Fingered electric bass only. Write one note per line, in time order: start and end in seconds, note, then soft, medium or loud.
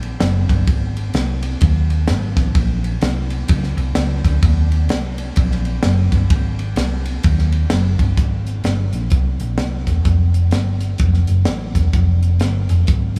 0.00 0.14 A#1 loud
0.20 0.45 F#1 loud
0.49 0.65 G1 medium
0.67 1.07 G#1 loud
1.14 1.54 C2 medium
1.62 2.09 D#2 loud
2.08 2.32 G#1 loud
2.37 2.52 A1 medium
2.55 2.95 A#1 loud
3.02 3.42 C2 loud
3.49 3.73 C#2 medium
3.77 3.93 C2 loud
3.95 4.20 C#2 loud
4.25 4.40 D2 loud
4.43 4.90 D#2 loud
4.90 5.30 C2 medium
5.37 5.77 A#1 medium
5.83 6.08 F#1 loud
6.12 6.27 G1 medium
6.31 6.77 G#1 loud
6.77 7.17 C2 loud
7.24 7.64 D#2 loud
7.71 7.95 F#1 loud
7.99 8.15 G1 medium
8.18 8.57 G#1 medium
8.64 8.89 G1 medium
8.93 9.09 A#1 medium
9.12 9.36 C2 loud
9.40 9.58 A#1 medium
9.58 9.88 C2 medium
9.87 10.03 E1 medium
10.05 10.53 F1 medium
10.53 10.93 G1 medium
11.00 11.24 F1 loud
11.28 11.44 F#1 medium
11.46 11.71 A1 medium
11.75 11.91 E1 medium
11.93 12.41 F1 loud
12.41 12.65 G1 loud
12.70 12.85 F1 medium
12.88 13.12 G#1 medium